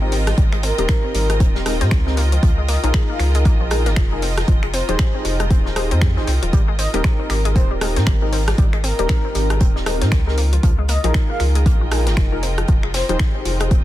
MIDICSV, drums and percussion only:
0, 0, Header, 1, 2, 480
1, 0, Start_track
1, 0, Key_signature, -4, "major"
1, 0, Tempo, 512821
1, 353, Time_signature, 4, 2, 24, 8
1, 12955, End_track
2, 0, Start_track
2, 0, Title_t, "Drums"
2, 113, Note_on_c, 9, 46, 93
2, 117, Note_off_c, 9, 46, 0
2, 117, Note_on_c, 9, 46, 84
2, 211, Note_off_c, 9, 46, 0
2, 254, Note_on_c, 9, 37, 77
2, 254, Note_on_c, 9, 42, 70
2, 256, Note_on_c, 9, 38, 37
2, 348, Note_off_c, 9, 37, 0
2, 348, Note_off_c, 9, 42, 0
2, 350, Note_off_c, 9, 38, 0
2, 353, Note_on_c, 9, 36, 119
2, 353, Note_on_c, 9, 42, 52
2, 356, Note_off_c, 9, 42, 0
2, 356, Note_on_c, 9, 42, 83
2, 446, Note_off_c, 9, 36, 0
2, 450, Note_off_c, 9, 42, 0
2, 492, Note_on_c, 9, 26, 40
2, 497, Note_on_c, 9, 42, 42
2, 585, Note_off_c, 9, 26, 0
2, 590, Note_off_c, 9, 42, 0
2, 590, Note_on_c, 9, 42, 72
2, 593, Note_on_c, 9, 46, 106
2, 684, Note_off_c, 9, 42, 0
2, 686, Note_off_c, 9, 46, 0
2, 735, Note_on_c, 9, 42, 62
2, 825, Note_on_c, 9, 38, 113
2, 828, Note_off_c, 9, 42, 0
2, 830, Note_on_c, 9, 26, 127
2, 832, Note_on_c, 9, 42, 86
2, 833, Note_off_c, 9, 42, 0
2, 833, Note_on_c, 9, 36, 111
2, 833, Note_on_c, 9, 42, 55
2, 919, Note_off_c, 9, 38, 0
2, 924, Note_off_c, 9, 26, 0
2, 926, Note_off_c, 9, 36, 0
2, 926, Note_off_c, 9, 42, 0
2, 1072, Note_on_c, 9, 46, 97
2, 1077, Note_on_c, 9, 42, 72
2, 1166, Note_off_c, 9, 46, 0
2, 1170, Note_off_c, 9, 42, 0
2, 1215, Note_on_c, 9, 37, 59
2, 1215, Note_on_c, 9, 42, 66
2, 1220, Note_off_c, 9, 42, 0
2, 1220, Note_on_c, 9, 42, 39
2, 1308, Note_off_c, 9, 37, 0
2, 1313, Note_off_c, 9, 42, 0
2, 1313, Note_on_c, 9, 36, 119
2, 1313, Note_on_c, 9, 42, 54
2, 1406, Note_off_c, 9, 36, 0
2, 1407, Note_off_c, 9, 42, 0
2, 1450, Note_on_c, 9, 38, 47
2, 1544, Note_off_c, 9, 38, 0
2, 1551, Note_on_c, 9, 38, 43
2, 1552, Note_on_c, 9, 42, 66
2, 1553, Note_on_c, 9, 37, 65
2, 1553, Note_on_c, 9, 46, 107
2, 1644, Note_off_c, 9, 38, 0
2, 1645, Note_off_c, 9, 42, 0
2, 1646, Note_off_c, 9, 37, 0
2, 1646, Note_off_c, 9, 46, 0
2, 1688, Note_on_c, 9, 38, 47
2, 1695, Note_on_c, 9, 42, 67
2, 1782, Note_off_c, 9, 38, 0
2, 1787, Note_off_c, 9, 42, 0
2, 1787, Note_on_c, 9, 42, 91
2, 1790, Note_on_c, 9, 26, 112
2, 1790, Note_on_c, 9, 38, 108
2, 1793, Note_off_c, 9, 42, 0
2, 1793, Note_on_c, 9, 36, 106
2, 1793, Note_on_c, 9, 42, 53
2, 1884, Note_off_c, 9, 26, 0
2, 1884, Note_off_c, 9, 38, 0
2, 1886, Note_off_c, 9, 36, 0
2, 1886, Note_off_c, 9, 42, 0
2, 1935, Note_on_c, 9, 38, 42
2, 2028, Note_off_c, 9, 38, 0
2, 2033, Note_on_c, 9, 46, 100
2, 2041, Note_on_c, 9, 42, 60
2, 2126, Note_off_c, 9, 46, 0
2, 2135, Note_off_c, 9, 42, 0
2, 2175, Note_on_c, 9, 42, 69
2, 2268, Note_off_c, 9, 42, 0
2, 2273, Note_on_c, 9, 36, 125
2, 2273, Note_on_c, 9, 42, 50
2, 2277, Note_off_c, 9, 42, 0
2, 2277, Note_on_c, 9, 42, 89
2, 2366, Note_off_c, 9, 36, 0
2, 2371, Note_off_c, 9, 42, 0
2, 2512, Note_on_c, 9, 42, 67
2, 2513, Note_on_c, 9, 46, 109
2, 2606, Note_off_c, 9, 42, 0
2, 2607, Note_off_c, 9, 46, 0
2, 2655, Note_on_c, 9, 42, 64
2, 2748, Note_off_c, 9, 42, 0
2, 2751, Note_on_c, 9, 26, 127
2, 2751, Note_on_c, 9, 42, 78
2, 2753, Note_off_c, 9, 42, 0
2, 2753, Note_on_c, 9, 36, 108
2, 2753, Note_on_c, 9, 42, 53
2, 2755, Note_on_c, 9, 38, 115
2, 2844, Note_off_c, 9, 26, 0
2, 2846, Note_off_c, 9, 36, 0
2, 2847, Note_off_c, 9, 42, 0
2, 2848, Note_off_c, 9, 38, 0
2, 2987, Note_on_c, 9, 42, 63
2, 2991, Note_on_c, 9, 26, 38
2, 2993, Note_on_c, 9, 46, 93
2, 3081, Note_off_c, 9, 42, 0
2, 3084, Note_off_c, 9, 26, 0
2, 3087, Note_off_c, 9, 46, 0
2, 3127, Note_on_c, 9, 42, 45
2, 3135, Note_off_c, 9, 42, 0
2, 3135, Note_on_c, 9, 42, 67
2, 3228, Note_off_c, 9, 42, 0
2, 3230, Note_on_c, 9, 42, 78
2, 3233, Note_off_c, 9, 42, 0
2, 3233, Note_on_c, 9, 36, 116
2, 3233, Note_on_c, 9, 42, 52
2, 3326, Note_off_c, 9, 36, 0
2, 3327, Note_off_c, 9, 42, 0
2, 3468, Note_on_c, 9, 42, 59
2, 3473, Note_on_c, 9, 37, 62
2, 3473, Note_on_c, 9, 46, 108
2, 3561, Note_off_c, 9, 42, 0
2, 3567, Note_off_c, 9, 37, 0
2, 3567, Note_off_c, 9, 46, 0
2, 3615, Note_on_c, 9, 38, 49
2, 3615, Note_on_c, 9, 42, 63
2, 3708, Note_off_c, 9, 42, 0
2, 3709, Note_off_c, 9, 38, 0
2, 3710, Note_on_c, 9, 26, 118
2, 3713, Note_on_c, 9, 36, 111
2, 3713, Note_on_c, 9, 42, 50
2, 3714, Note_off_c, 9, 42, 0
2, 3714, Note_on_c, 9, 38, 117
2, 3714, Note_on_c, 9, 42, 88
2, 3804, Note_off_c, 9, 26, 0
2, 3806, Note_off_c, 9, 36, 0
2, 3807, Note_off_c, 9, 38, 0
2, 3808, Note_off_c, 9, 42, 0
2, 3953, Note_on_c, 9, 46, 78
2, 4047, Note_off_c, 9, 46, 0
2, 4092, Note_on_c, 9, 38, 39
2, 4095, Note_on_c, 9, 37, 80
2, 4095, Note_on_c, 9, 42, 68
2, 4186, Note_off_c, 9, 38, 0
2, 4188, Note_off_c, 9, 37, 0
2, 4188, Note_off_c, 9, 42, 0
2, 4193, Note_on_c, 9, 36, 121
2, 4193, Note_on_c, 9, 42, 49
2, 4194, Note_off_c, 9, 42, 0
2, 4194, Note_on_c, 9, 42, 82
2, 4287, Note_off_c, 9, 36, 0
2, 4288, Note_off_c, 9, 42, 0
2, 4332, Note_on_c, 9, 26, 35
2, 4337, Note_on_c, 9, 42, 43
2, 4425, Note_off_c, 9, 26, 0
2, 4431, Note_off_c, 9, 42, 0
2, 4433, Note_on_c, 9, 46, 114
2, 4436, Note_on_c, 9, 42, 70
2, 4526, Note_off_c, 9, 46, 0
2, 4530, Note_off_c, 9, 42, 0
2, 4575, Note_on_c, 9, 42, 61
2, 4668, Note_off_c, 9, 42, 0
2, 4670, Note_on_c, 9, 26, 124
2, 4670, Note_on_c, 9, 42, 92
2, 4673, Note_off_c, 9, 42, 0
2, 4673, Note_on_c, 9, 36, 113
2, 4673, Note_on_c, 9, 42, 53
2, 4676, Note_on_c, 9, 38, 104
2, 4763, Note_off_c, 9, 26, 0
2, 4766, Note_off_c, 9, 42, 0
2, 4767, Note_off_c, 9, 36, 0
2, 4769, Note_off_c, 9, 38, 0
2, 4913, Note_on_c, 9, 46, 96
2, 4916, Note_on_c, 9, 42, 67
2, 5006, Note_off_c, 9, 46, 0
2, 5010, Note_off_c, 9, 42, 0
2, 5050, Note_on_c, 9, 42, 45
2, 5054, Note_off_c, 9, 42, 0
2, 5054, Note_on_c, 9, 37, 63
2, 5054, Note_on_c, 9, 42, 68
2, 5148, Note_off_c, 9, 37, 0
2, 5148, Note_off_c, 9, 42, 0
2, 5153, Note_on_c, 9, 36, 122
2, 5153, Note_on_c, 9, 42, 52
2, 5154, Note_off_c, 9, 42, 0
2, 5154, Note_on_c, 9, 42, 90
2, 5247, Note_off_c, 9, 36, 0
2, 5247, Note_off_c, 9, 42, 0
2, 5294, Note_on_c, 9, 38, 47
2, 5388, Note_off_c, 9, 38, 0
2, 5393, Note_on_c, 9, 37, 68
2, 5393, Note_on_c, 9, 46, 111
2, 5394, Note_on_c, 9, 42, 68
2, 5486, Note_off_c, 9, 37, 0
2, 5486, Note_off_c, 9, 46, 0
2, 5488, Note_off_c, 9, 42, 0
2, 5534, Note_on_c, 9, 42, 61
2, 5628, Note_off_c, 9, 42, 0
2, 5629, Note_on_c, 9, 38, 122
2, 5630, Note_on_c, 9, 26, 109
2, 5630, Note_on_c, 9, 42, 83
2, 5633, Note_off_c, 9, 42, 0
2, 5633, Note_on_c, 9, 36, 107
2, 5633, Note_on_c, 9, 42, 48
2, 5723, Note_off_c, 9, 38, 0
2, 5724, Note_off_c, 9, 26, 0
2, 5726, Note_off_c, 9, 42, 0
2, 5727, Note_off_c, 9, 36, 0
2, 5773, Note_on_c, 9, 38, 43
2, 5866, Note_off_c, 9, 38, 0
2, 5873, Note_on_c, 9, 46, 93
2, 5880, Note_on_c, 9, 42, 65
2, 5966, Note_off_c, 9, 46, 0
2, 5973, Note_off_c, 9, 42, 0
2, 6015, Note_on_c, 9, 42, 61
2, 6108, Note_off_c, 9, 42, 0
2, 6113, Note_on_c, 9, 36, 121
2, 6113, Note_on_c, 9, 42, 50
2, 6115, Note_off_c, 9, 42, 0
2, 6115, Note_on_c, 9, 42, 94
2, 6207, Note_off_c, 9, 36, 0
2, 6208, Note_off_c, 9, 42, 0
2, 6353, Note_on_c, 9, 46, 104
2, 6357, Note_on_c, 9, 42, 72
2, 6447, Note_off_c, 9, 46, 0
2, 6451, Note_off_c, 9, 42, 0
2, 6495, Note_on_c, 9, 42, 62
2, 6589, Note_off_c, 9, 42, 0
2, 6591, Note_on_c, 9, 26, 116
2, 6592, Note_on_c, 9, 42, 77
2, 6593, Note_off_c, 9, 42, 0
2, 6593, Note_on_c, 9, 36, 113
2, 6593, Note_on_c, 9, 42, 53
2, 6598, Note_on_c, 9, 38, 108
2, 6684, Note_off_c, 9, 26, 0
2, 6687, Note_off_c, 9, 36, 0
2, 6687, Note_off_c, 9, 42, 0
2, 6691, Note_off_c, 9, 38, 0
2, 6831, Note_on_c, 9, 26, 36
2, 6832, Note_on_c, 9, 42, 75
2, 6834, Note_on_c, 9, 46, 94
2, 6925, Note_off_c, 9, 26, 0
2, 6926, Note_off_c, 9, 42, 0
2, 6927, Note_off_c, 9, 46, 0
2, 6975, Note_on_c, 9, 42, 65
2, 6976, Note_off_c, 9, 42, 0
2, 6976, Note_on_c, 9, 42, 45
2, 7070, Note_off_c, 9, 42, 0
2, 7073, Note_on_c, 9, 36, 109
2, 7073, Note_on_c, 9, 42, 50
2, 7074, Note_off_c, 9, 42, 0
2, 7074, Note_on_c, 9, 42, 84
2, 7166, Note_off_c, 9, 36, 0
2, 7168, Note_off_c, 9, 42, 0
2, 7313, Note_on_c, 9, 37, 70
2, 7313, Note_on_c, 9, 46, 109
2, 7317, Note_on_c, 9, 42, 68
2, 7407, Note_off_c, 9, 37, 0
2, 7407, Note_off_c, 9, 46, 0
2, 7410, Note_off_c, 9, 42, 0
2, 7455, Note_on_c, 9, 42, 65
2, 7458, Note_on_c, 9, 38, 49
2, 7548, Note_off_c, 9, 42, 0
2, 7549, Note_on_c, 9, 42, 82
2, 7550, Note_off_c, 9, 38, 0
2, 7550, Note_on_c, 9, 26, 107
2, 7550, Note_on_c, 9, 38, 119
2, 7553, Note_off_c, 9, 42, 0
2, 7553, Note_on_c, 9, 36, 107
2, 7553, Note_on_c, 9, 42, 50
2, 7644, Note_off_c, 9, 26, 0
2, 7644, Note_off_c, 9, 38, 0
2, 7646, Note_off_c, 9, 36, 0
2, 7647, Note_off_c, 9, 42, 0
2, 7792, Note_on_c, 9, 46, 77
2, 7793, Note_off_c, 9, 46, 0
2, 7793, Note_on_c, 9, 46, 95
2, 7886, Note_off_c, 9, 46, 0
2, 7934, Note_on_c, 9, 38, 39
2, 7935, Note_on_c, 9, 37, 89
2, 7935, Note_on_c, 9, 42, 65
2, 8028, Note_off_c, 9, 37, 0
2, 8028, Note_off_c, 9, 38, 0
2, 8028, Note_off_c, 9, 42, 0
2, 8033, Note_on_c, 9, 36, 115
2, 8033, Note_on_c, 9, 42, 55
2, 8034, Note_off_c, 9, 42, 0
2, 8034, Note_on_c, 9, 42, 88
2, 8126, Note_off_c, 9, 36, 0
2, 8127, Note_off_c, 9, 42, 0
2, 8172, Note_on_c, 9, 26, 36
2, 8175, Note_on_c, 9, 42, 43
2, 8266, Note_off_c, 9, 26, 0
2, 8268, Note_off_c, 9, 42, 0
2, 8273, Note_on_c, 9, 46, 99
2, 8278, Note_on_c, 9, 42, 77
2, 8366, Note_off_c, 9, 46, 0
2, 8372, Note_off_c, 9, 42, 0
2, 8414, Note_on_c, 9, 42, 64
2, 8505, Note_on_c, 9, 38, 118
2, 8508, Note_off_c, 9, 42, 0
2, 8510, Note_on_c, 9, 26, 117
2, 8513, Note_on_c, 9, 36, 108
2, 8513, Note_on_c, 9, 42, 53
2, 8515, Note_off_c, 9, 42, 0
2, 8515, Note_on_c, 9, 42, 92
2, 8599, Note_off_c, 9, 38, 0
2, 8603, Note_off_c, 9, 26, 0
2, 8606, Note_off_c, 9, 36, 0
2, 8609, Note_off_c, 9, 42, 0
2, 8749, Note_on_c, 9, 42, 70
2, 8752, Note_on_c, 9, 46, 91
2, 8843, Note_off_c, 9, 42, 0
2, 8846, Note_off_c, 9, 46, 0
2, 8894, Note_on_c, 9, 37, 69
2, 8894, Note_on_c, 9, 42, 68
2, 8899, Note_off_c, 9, 42, 0
2, 8899, Note_on_c, 9, 42, 41
2, 8988, Note_off_c, 9, 37, 0
2, 8989, Note_off_c, 9, 42, 0
2, 8989, Note_on_c, 9, 42, 85
2, 8992, Note_off_c, 9, 42, 0
2, 8992, Note_on_c, 9, 36, 113
2, 8992, Note_on_c, 9, 42, 53
2, 9086, Note_off_c, 9, 36, 0
2, 9086, Note_off_c, 9, 42, 0
2, 9134, Note_on_c, 9, 38, 45
2, 9228, Note_off_c, 9, 38, 0
2, 9231, Note_on_c, 9, 42, 61
2, 9232, Note_on_c, 9, 37, 70
2, 9232, Note_on_c, 9, 46, 101
2, 9233, Note_on_c, 9, 38, 45
2, 9324, Note_off_c, 9, 42, 0
2, 9325, Note_off_c, 9, 37, 0
2, 9325, Note_off_c, 9, 46, 0
2, 9326, Note_off_c, 9, 38, 0
2, 9374, Note_on_c, 9, 42, 68
2, 9379, Note_on_c, 9, 38, 47
2, 9467, Note_off_c, 9, 42, 0
2, 9469, Note_on_c, 9, 42, 90
2, 9470, Note_on_c, 9, 26, 107
2, 9472, Note_off_c, 9, 38, 0
2, 9472, Note_off_c, 9, 42, 0
2, 9472, Note_on_c, 9, 36, 100
2, 9472, Note_on_c, 9, 42, 52
2, 9475, Note_on_c, 9, 38, 110
2, 9563, Note_off_c, 9, 26, 0
2, 9566, Note_off_c, 9, 36, 0
2, 9566, Note_off_c, 9, 42, 0
2, 9568, Note_off_c, 9, 38, 0
2, 9619, Note_on_c, 9, 38, 43
2, 9710, Note_on_c, 9, 42, 62
2, 9712, Note_on_c, 9, 46, 90
2, 9713, Note_off_c, 9, 38, 0
2, 9804, Note_off_c, 9, 42, 0
2, 9806, Note_off_c, 9, 46, 0
2, 9854, Note_on_c, 9, 42, 64
2, 9947, Note_off_c, 9, 42, 0
2, 9952, Note_on_c, 9, 36, 109
2, 9952, Note_on_c, 9, 42, 53
2, 9954, Note_off_c, 9, 42, 0
2, 9954, Note_on_c, 9, 42, 91
2, 10046, Note_off_c, 9, 36, 0
2, 10048, Note_off_c, 9, 42, 0
2, 10188, Note_on_c, 9, 42, 79
2, 10192, Note_on_c, 9, 46, 97
2, 10281, Note_off_c, 9, 42, 0
2, 10286, Note_off_c, 9, 46, 0
2, 10334, Note_on_c, 9, 42, 66
2, 10428, Note_off_c, 9, 42, 0
2, 10429, Note_on_c, 9, 42, 87
2, 10430, Note_on_c, 9, 26, 124
2, 10431, Note_on_c, 9, 38, 106
2, 10433, Note_off_c, 9, 42, 0
2, 10433, Note_on_c, 9, 36, 108
2, 10433, Note_on_c, 9, 42, 56
2, 10523, Note_off_c, 9, 26, 0
2, 10524, Note_off_c, 9, 38, 0
2, 10526, Note_off_c, 9, 36, 0
2, 10526, Note_off_c, 9, 42, 0
2, 10666, Note_on_c, 9, 42, 68
2, 10670, Note_on_c, 9, 26, 38
2, 10672, Note_on_c, 9, 46, 83
2, 10760, Note_off_c, 9, 42, 0
2, 10763, Note_off_c, 9, 26, 0
2, 10766, Note_off_c, 9, 46, 0
2, 10810, Note_on_c, 9, 42, 44
2, 10814, Note_off_c, 9, 42, 0
2, 10814, Note_on_c, 9, 42, 67
2, 10908, Note_off_c, 9, 42, 0
2, 10913, Note_on_c, 9, 36, 110
2, 10913, Note_on_c, 9, 42, 54
2, 10918, Note_off_c, 9, 42, 0
2, 10918, Note_on_c, 9, 42, 87
2, 11006, Note_off_c, 9, 36, 0
2, 11012, Note_off_c, 9, 42, 0
2, 11150, Note_on_c, 9, 42, 70
2, 11153, Note_on_c, 9, 37, 68
2, 11153, Note_on_c, 9, 46, 98
2, 11244, Note_off_c, 9, 42, 0
2, 11246, Note_off_c, 9, 37, 0
2, 11246, Note_off_c, 9, 46, 0
2, 11295, Note_on_c, 9, 38, 56
2, 11295, Note_on_c, 9, 42, 70
2, 11388, Note_off_c, 9, 38, 0
2, 11388, Note_off_c, 9, 42, 0
2, 11390, Note_on_c, 9, 26, 107
2, 11392, Note_on_c, 9, 38, 103
2, 11393, Note_on_c, 9, 36, 104
2, 11393, Note_on_c, 9, 42, 55
2, 11396, Note_off_c, 9, 42, 0
2, 11396, Note_on_c, 9, 42, 84
2, 11484, Note_off_c, 9, 26, 0
2, 11486, Note_off_c, 9, 36, 0
2, 11486, Note_off_c, 9, 38, 0
2, 11490, Note_off_c, 9, 42, 0
2, 11632, Note_on_c, 9, 46, 89
2, 11633, Note_on_c, 9, 42, 86
2, 11726, Note_off_c, 9, 46, 0
2, 11727, Note_off_c, 9, 42, 0
2, 11774, Note_on_c, 9, 37, 81
2, 11774, Note_on_c, 9, 42, 64
2, 11867, Note_off_c, 9, 42, 0
2, 11867, Note_on_c, 9, 42, 55
2, 11868, Note_off_c, 9, 37, 0
2, 11873, Note_off_c, 9, 42, 0
2, 11873, Note_on_c, 9, 36, 115
2, 11873, Note_on_c, 9, 42, 55
2, 11966, Note_off_c, 9, 36, 0
2, 11966, Note_off_c, 9, 42, 0
2, 12012, Note_on_c, 9, 26, 35
2, 12105, Note_off_c, 9, 26, 0
2, 12111, Note_on_c, 9, 42, 85
2, 12113, Note_on_c, 9, 46, 105
2, 12116, Note_on_c, 9, 38, 103
2, 12205, Note_off_c, 9, 42, 0
2, 12206, Note_off_c, 9, 46, 0
2, 12209, Note_off_c, 9, 38, 0
2, 12255, Note_on_c, 9, 42, 64
2, 12348, Note_off_c, 9, 42, 0
2, 12349, Note_on_c, 9, 42, 88
2, 12350, Note_on_c, 9, 26, 124
2, 12353, Note_off_c, 9, 42, 0
2, 12353, Note_on_c, 9, 36, 107
2, 12353, Note_on_c, 9, 42, 55
2, 12361, Note_on_c, 9, 38, 115
2, 12444, Note_off_c, 9, 26, 0
2, 12446, Note_off_c, 9, 36, 0
2, 12446, Note_off_c, 9, 42, 0
2, 12454, Note_off_c, 9, 38, 0
2, 12592, Note_on_c, 9, 42, 71
2, 12593, Note_on_c, 9, 46, 88
2, 12685, Note_off_c, 9, 42, 0
2, 12687, Note_off_c, 9, 46, 0
2, 12727, Note_on_c, 9, 42, 48
2, 12735, Note_off_c, 9, 42, 0
2, 12735, Note_on_c, 9, 37, 62
2, 12735, Note_on_c, 9, 42, 68
2, 12829, Note_off_c, 9, 37, 0
2, 12829, Note_off_c, 9, 42, 0
2, 12831, Note_on_c, 9, 42, 81
2, 12833, Note_off_c, 9, 42, 0
2, 12833, Note_on_c, 9, 36, 113
2, 12833, Note_on_c, 9, 42, 57
2, 12926, Note_off_c, 9, 36, 0
2, 12927, Note_off_c, 9, 42, 0
2, 12955, End_track
0, 0, End_of_file